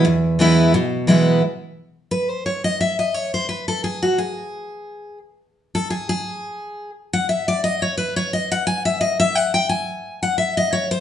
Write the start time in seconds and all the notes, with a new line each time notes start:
0.05 E2
0.39 E3 G#3 B3 E4
0.74 B2
1.07 E3 G#3 B3 E4
2.11 B4
2.30 C5
2.46 C#5
2.64 D#5
2.81 E5
2.99 D#5
3.14 C#5
3.34 C5
3.49 B4
3.68 A4
3.84 G#4
4.02 F#4
4.18 G#4
5.75 A4
5.90 G#4
6.09 G#4
7.13 F#5
7.29 E5
7.48 D5
7.64 D#5
7.82 C#5
7.97 B4
8.16 C#5
8.33 D#5
8.52 F#5
8.67 G#5
8.85 E5
9.01 D#5
9.20 E5
9.35 F#5
9.54 G5
9.69 G#5
10.23 F#5
10.38 E5
10.57 D#5
10.73 C#5
10.91 C5